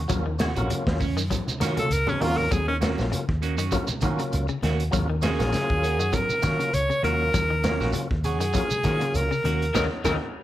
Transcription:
0.08 D#2 F#3 A#3 C#4 F4, kick, closed hi-hat, high conga, low conga, shekere
0.26 D#3
0.39 C#4 F#4 G#4, muted clean electric guitar stroke, snare, closed hi-hat, high conga, shekere
0.56 A#1 F#3 A#3 C#4 F4 F#4, closed hi-hat, low conga, shekere
0.70 C#3, closed hi-hat, high conga, shekere
0.87 D#2, kick, snare
1.00 C#4, muted clean electric guitar stroke, kick, open hi-hat, high conga, shekere
1.16 F#2 D#3, shekere
1.30 F#3, kick, closed hi-hat, high conga, low conga, shekere
1.47 muted fingered electric bass stroke, high conga, shekere
1.60 D#3 F#3 A#3 C#4 F4 F#4, snare, closed hi-hat, high conga, shekere
1.77 C#3 A4, closed hi-hat, high conga, shekere
1.90 C#2 A#4, closed hi-hat, shekere
2.07 C#3 C#4, low conga, shekere
2.20 D#2 D#3 F#3 A#3 C#4 F4 F#4, open hi-hat, low conga
2.38 A#4, low conga
2.51 D#2 F#3 G#4, kick, closed hi-hat, high conga, low conga, shekere
2.68 D#3 C#4
2.81 F#3 A#3 C#4 F4 F#4, snare, closed hi-hat, high conga, shekere
2.98 A#1, snare, low conga, shekere
3.12 C#3, closed hi-hat, high conga, shekere
3.29 D#2, kick
3.42 A#3 C#4 F#4, closed hi-hat, shekere
3.58 F#2 D#3 C#4 F#4, closed hi-hat, shekere
3.72 F#3 A#3 C#4 F4, kick, closed hi-hat, high conga, low conga, shekere
3.87 muted fingered electric bass stroke, high conga, shekere
4.01 D#3 F#3 A#3 C#4 F4 F#4, kick, closed hi-hat, high conga, shekere
4.19 C#3, closed hi-hat, shekere
4.32 C#2, closed hi-hat, high conga, shekere
4.48 C#3, shekere
4.62 D#2 D#3 A#3 C#4 F#4, snare, closed hi-hat, high conga
4.80 closed hi-hat
4.91 D#2 F#3 A#3 C#4 F4, kick, closed hi-hat, high conga, low conga, shekere
5.10 D#3
5.22 A#3 C#4 F4 F#4 G#4, snare, closed hi-hat, high conga, shekere
5.38 A#1 F#3 A#3 C#4 F4, snare, closed hi-hat, low conga, shekere
5.53 C#3, snare, closed hi-hat, high conga, shekere
5.70 D#2, kick
5.83 A#3 C#4 F#4, closed hi-hat, shekere
5.99 F#2 D#3 C#4 F#4, shekere
6.13 F#3 A#4, kick, closed hi-hat, high conga, low conga, shekere
6.29 muted fingered electric bass stroke, high conga, shekere
6.42 D#3 F#3 A#3 C#4 F4 F#4, muted clean electric guitar stroke, kick, snare, closed hi-hat, high conga, shekere
6.59 C#3, closed hi-hat, shekere
6.73 C#2 C#5, closed hi-hat, high conga, shekere
6.90 C#3, shekere
7.03 D#2 D#3 F#3 A#3 C#4 F4 F#4 A#4, closed hi-hat, high conga
7.34 D#2 F#3, kick, closed hi-hat, high conga, low conga, shekere
7.50 D#3
7.64 F#3 A#3 C#4 F4, snare, closed hi-hat, high conga, shekere
7.80 A#1 C#4 F#4, snare, low conga, shekere
7.93 C#3, closed hi-hat, high conga, shekere
8.11 D#2, kick
8.24 C#4 F#4 G#4, muted clean electric guitar stroke, closed hi-hat, high conga, shekere
8.40 F#2 D#3 F#4, closed hi-hat, shekere
8.54 F#3 A#3 C#4 F4, kick, closed hi-hat, high conga, low conga, shekere
8.70 muted fingered electric bass stroke, high conga, shekere
8.84 D#3 F#3 A#3 C#4 F4 F#4, muted clean electric guitar stroke, kick, closed hi-hat, high conga, shekere
9.00 C#3, closed hi-hat, shekere
9.14 C#2 A#4, closed hi-hat, high conga, shekere
9.31 C#3, shekere
9.44 D#2 D#3 A#3 C#4 F#4, closed hi-hat, high conga
9.62 closed hi-hat
9.74 D#2 C#3 D#3 F#3 A#3 C#4 D#4 A#4, kick, snare, low conga, shekere
10.04 D#2 C#3 D#3 F#3 A#3 C#4 D#4 A#4, kick, snare, low conga, shekere

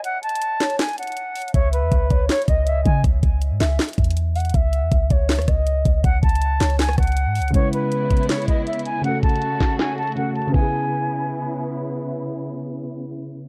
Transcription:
0.04 F#5, closed hi-hat
0.23 A5, closed hi-hat
0.29 closed hi-hat
0.35 closed hi-hat
0.42 closed hi-hat
0.60 C#5, snare, clap, closed hi-hat
0.70 closed hi-hat
0.79 G#5, snare, clap, closed hi-hat
0.84 closed hi-hat
0.89 closed hi-hat
0.93 closed hi-hat
0.98 F#5, closed hi-hat
1.03 closed hi-hat
1.07 closed hi-hat
1.12 closed hi-hat
1.17 closed hi-hat
1.36 closed hi-hat, open hi-hat
1.42 closed hi-hat
1.48 closed hi-hat
1.54 C#2 C#5 E5, kick, closed hi-hat
1.73 B4, closed hi-hat
1.82 E2
1.92 C#2, kick, closed hi-hat
2.10 C#2 C#5, kick, closed hi-hat
2.29 C#5, snare, clap, closed hi-hat
2.36 closed hi-hat
2.42 closed hi-hat
2.47 C#2 D#5, kick, closed hi-hat
2.67 E5, closed hi-hat
2.85 C#3 G#5, kick, closed hi-hat
3.04 C#2, kick, closed hi-hat
3.23 C#2, kick, closed hi-hat
3.42 closed hi-hat
3.51 G#2
3.60 C#2 E5, snare, clap, closed hi-hat
3.79 snare, clap, closed hi-hat
3.84 closed hi-hat
3.89 closed hi-hat
3.93 closed hi-hat
3.98 E2, kick, closed hi-hat
4.04 closed hi-hat
4.11 closed hi-hat
4.17 closed hi-hat
4.35 F#5, closed hi-hat, open hi-hat
4.40 closed hi-hat
4.45 closed hi-hat
4.50 closed hi-hat
4.54 C#2 E5, kick, closed hi-hat
4.73 closed hi-hat
4.82 E2
4.92 C#2, kick, closed hi-hat
5.10 C#2 C#5, kick, closed hi-hat
5.29 snare, clap, closed hi-hat
5.35 D#2, cross-stick, closed hi-hat
5.42 closed hi-hat
5.48 C#2 D#5, kick, cross-stick, closed hi-hat
5.67 closed hi-hat
5.85 C#2, kick, closed hi-hat
6.04 C#2 F#5, kick, closed hi-hat
6.23 C#2 A5, kick, closed hi-hat
6.29 closed hi-hat
6.35 closed hi-hat
6.42 closed hi-hat
6.60 C#2 C#5, snare, clap, closed hi-hat
6.70 closed hi-hat
6.79 G#5, snare, clap, closed hi-hat
6.84 closed hi-hat
6.89 cross-stick, closed hi-hat
6.93 closed hi-hat
6.98 C#2 F#5, kick, cross-stick, closed hi-hat
7.03 closed hi-hat
7.07 closed hi-hat
7.12 closed hi-hat
7.17 closed hi-hat
7.26 G#2
7.35 closed hi-hat, open hi-hat
7.40 C#2, closed hi-hat
7.48 C#3, closed hi-hat
7.53 C#3 G#3 B3 E4 C#5, kick, closed hi-hat
7.57 B4
7.73 B4, closed hi-hat
7.92 closed hi-hat
8.10 kick, closed hi-hat
8.17 closed hi-hat
8.23 closed hi-hat
8.29 C#5, snare, clap, closed hi-hat
8.35 closed hi-hat
8.42 closed hi-hat
8.48 D#5, kick, closed hi-hat
8.67 E5, closed hi-hat
8.73 closed hi-hat
8.79 closed hi-hat
8.85 G#5, closed hi-hat
9.01 C#3 A3 F#4 F#5, closed hi-hat
9.06 F#4 A4
9.23 A5, kick, closed hi-hat
9.29 closed hi-hat
9.36 closed hi-hat
9.42 closed hi-hat
9.60 kick, snare, clap, closed hi-hat
9.79 G#5, snare, clap, closed hi-hat
9.98 A5, closed hi-hat
10.03 closed hi-hat
10.07 closed hi-hat
10.12 C#3, closed hi-hat
10.17 A3 F#4 A4 F#5, closed hi-hat
10.35 A5, closed hi-hat
10.42 closed hi-hat
10.47 C#3, closed hi-hat
10.52 C#3 B3 E4 G#5, kick, crash
10.57 E4
10.61 G#4

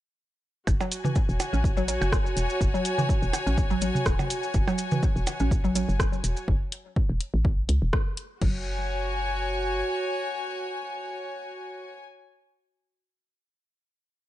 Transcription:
0.67 F#1 F#4, kick, percussion blips, maracas
0.81 F#3, percussion blips, maracas
0.92 closed hi-hat, maracas
0.99 G#5
1.05 E3, mid tom, maracas
1.15 kick, maracas
1.27 E1 C#5, maracas
1.40 closed hi-hat, percussion blips, maracas
1.53 A1 C#4, maracas
1.64 kick, maracas
1.77 F#3, maracas
1.88 F#3, closed hi-hat, maracas
2.01 F#1, percussion blips, maracas
2.12 kick, cross-stick, maracas
2.26 maracas
2.37 E1, closed hi-hat, maracas
2.50 maracas
2.61 F#1, kick, maracas
2.74 F#3, maracas
2.85 closed hi-hat, maracas
2.98 E3, mid tom, maracas
3.09 kick, maracas
3.22 E1, maracas
3.33 closed hi-hat, percussion blips, maracas
3.47 A1 C#4, maracas
3.57 kick, maracas
3.70 F#3, maracas
3.81 F#3, closed hi-hat, maracas
3.95 mid tom, maracas
4.06 E1, kick, cross-stick, maracas
4.19 mid tom, percussion blips, maracas
4.30 closed hi-hat, maracas
4.43 maracas
4.54 F#1, kick, maracas
4.68 F#3, percussion blips, maracas
4.78 closed hi-hat, maracas
4.91 E3, mid tom, maracas
5.03 kick, maracas
5.16 E1, maracas
5.27 closed hi-hat, percussion blips, maracas
5.40 A1 C#4, maracas
5.51 kick, maracas
5.64 F#3, maracas
5.75 F#3, closed hi-hat, maracas
5.89 F#1, maracas
6.00 kick, cross-stick, percussion blips, maracas
6.13 maracas
6.24 E1, closed hi-hat, maracas
6.37 maracas
6.48 F#1, kick
6.72 closed hi-hat
6.96 kick
7.10 E1
7.21 closed hi-hat
7.34 A1
7.45 kick
7.69 C#2, closed hi-hat
7.82 E1
7.93 kick, cross-stick
8.17 closed hi-hat
8.41 F#1 F#3 F#4, kick, crash
8.49 C#5
8.57 G#5

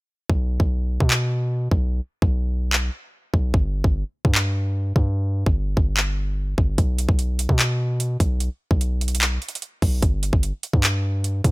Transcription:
0.30 B1, kick
0.60 B1, kick
1.00 B2, kick
1.11 clap
1.71 B1, kick
2.22 B1, kick
2.73 clap
3.34 B1, kick
3.54 G1, kick
3.84 G1, kick
4.25 G2, kick
4.35 clap
4.96 G2, kick
5.46 G1, kick
5.77 G1, kick
5.97 clap
6.58 G1, kick
6.78 B1, kick, closed hi-hat
6.99 closed hi-hat
7.09 B1, kick
7.19 closed hi-hat
7.39 closed hi-hat
7.49 B2, kick
7.59 clap, closed hi-hat
8.00 closed hi-hat
8.20 B1, kick, closed hi-hat
8.40 closed hi-hat
8.71 B1, kick
8.81 closed hi-hat
9.01 closed hi-hat
9.08 closed hi-hat
9.15 closed hi-hat
9.21 clap, closed hi-hat
9.42 closed hi-hat
9.49 closed hi-hat
9.55 closed hi-hat
9.62 closed hi-hat
9.82 B1, kick, open hi-hat
10.02 G1, kick, closed hi-hat
10.23 closed hi-hat
10.33 G1, kick
10.43 closed hi-hat
10.63 closed hi-hat
10.73 G2, kick
10.84 clap, closed hi-hat
11.24 closed hi-hat
11.44 G2, kick, closed hi-hat

